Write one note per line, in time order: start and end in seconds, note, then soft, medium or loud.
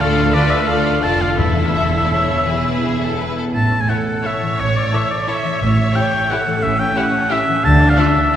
0.00 0.99 D2 medium
0.00 0.33 D3 medium
0.00 0.49 D4 soft
0.00 0.31 F4 medium
0.00 0.66 F4 soft
0.00 0.31 A4 medium
0.00 0.85 A4 soft
0.00 0.34 A4 medium
0.00 0.33 D5 medium
0.00 0.35 F5 medium
0.18 1.21 A3 soft
0.32 1.40 D3 medium
0.32 0.65 F4 medium
0.32 0.65 A4 medium
0.32 0.67 B4 medium
0.32 0.52 D5 medium
0.32 0.66 D5 medium
0.50 1.03 D4 soft
0.50 0.69 E5 medium
0.66 1.01 F4 medium
0.66 1.40 F4 soft
0.66 1.01 A4 medium
0.66 1.03 A4 medium
0.66 1.02 D5 medium
0.66 1.05 F5 medium
0.86 1.73 A4 soft
1.02 1.37 F1 medium
1.02 1.38 F2 soft
1.02 1.40 D4 soft
1.02 1.37 F4 medium
1.02 1.39 F4 medium
1.02 1.36 A4 soft
1.02 1.37 D5 medium
1.02 1.23 A5 medium
1.22 2.48 A3 soft
1.22 1.39 F5 medium
1.37 2.44 E1 medium
1.37 1.89 E2 medium
1.37 2.46 E2 medium
1.37 2.45 E3 soft
1.37 2.45 E4 soft
1.37 3.32 E4 medium
1.37 2.44 A4 medium
1.37 1.70 B4 soft
1.37 3.33 E5 medium
1.56 2.10 E4 soft
1.74 2.48 A4 soft
1.74 1.83 E5 medium
1.93 3.00 B4 soft
2.04 2.08 D5 soft
2.11 2.63 E4 soft
2.11 2.47 C#5 medium
2.29 3.36 B3 soft
2.45 3.34 E1 soft
2.45 3.34 E2 soft
2.45 3.54 E3 soft
2.45 3.34 E4 soft
2.45 3.36 G#4 soft
2.45 2.81 B4 medium
2.65 3.18 E4 soft
2.83 3.55 G#4 soft
2.83 3.01 G#4 medium
3.01 3.19 A4 medium
3.01 3.55 B4 soft
3.19 3.88 E4 soft
3.19 3.36 B4 medium
3.37 3.55 B3 soft
3.37 3.44 A4 soft
3.53 3.82 A1 medium
3.53 3.82 A2 medium
3.53 4.57 A2 soft
3.53 3.82 A5 medium
3.70 4.24 C#4 soft
3.81 3.91 G#5 medium
3.88 3.96 E4 soft
3.88 4.92 E4 soft
3.88 3.96 A4 soft
3.88 4.22 A4 medium
3.88 3.97 C#5 soft
3.88 4.28 F#5 medium
4.07 5.10 A4 soft
4.23 4.75 C#4 soft
4.23 4.31 E4 soft
4.23 4.32 A4 soft
4.23 5.29 C#5 medium
4.23 4.34 C#5 soft
4.23 4.61 E5 medium
4.42 5.43 E3 soft
4.59 4.87 A1 medium
4.59 5.60 A2 soft
4.59 4.87 A2 medium
4.59 4.78 C#5 medium
4.76 5.27 C#4 soft
4.76 4.96 D5 medium
4.92 5.00 E4 soft
4.92 7.67 E4 soft
4.92 5.00 A4 soft
4.92 5.02 C#5 soft
4.92 5.10 E5 medium
5.11 6.11 A4 soft
5.11 5.30 D5 medium
5.27 5.76 C#4 soft
5.27 5.35 E4 soft
5.27 5.35 A4 soft
5.27 5.61 C#5 medium
5.27 5.37 C#5 soft
5.27 5.62 E5 medium
5.44 5.62 E3 soft
5.61 5.89 A1 medium
5.61 6.61 A2 medium
5.61 5.90 A2 medium
5.61 6.10 A2 medium
5.61 6.31 C#5 medium
5.61 5.97 E5 medium
5.77 6.29 C#4 soft
5.94 6.02 E4 soft
5.94 6.02 G4 soft
5.94 6.94 G4 soft
5.94 6.04 C#5 soft
5.94 6.32 G5 medium
6.12 7.13 A4 soft
6.30 6.77 C#4 soft
6.30 6.38 E4 medium
6.30 6.38 G4 soft
6.30 6.63 A4 medium
6.30 6.38 C#5 soft
6.30 6.64 F#5 medium
6.46 7.48 E3 soft
6.62 6.91 A1 medium
6.62 7.66 A2 medium
6.62 6.91 A2 medium
6.62 7.65 C#4 medium
6.62 6.81 E5 medium
6.79 7.30 C#4 soft
6.79 6.99 G5 medium
6.96 7.05 E4 medium
6.96 7.66 G4 soft
6.96 7.04 G4 medium
6.96 7.04 C#5 medium
6.96 7.33 F#5 medium
7.14 8.15 A4 medium
7.30 7.66 C#4 soft
7.30 7.38 E4 medium
7.30 7.38 G4 medium
7.30 7.41 C#5 medium
7.30 7.66 E5 medium
7.49 7.66 E3 soft
7.63 7.92 D2 medium
7.63 7.93 D2 medium
7.63 8.36 D3 medium
7.63 8.35 D4 medium
7.63 7.91 A5 medium
7.81 8.33 D4 soft
7.90 8.01 F5 medium
7.97 8.05 D4 medium
7.97 8.05 F4 medium
7.97 8.36 F4 medium
7.97 8.05 A4 medium
7.97 8.36 E5 medium
8.16 8.36 A4 medium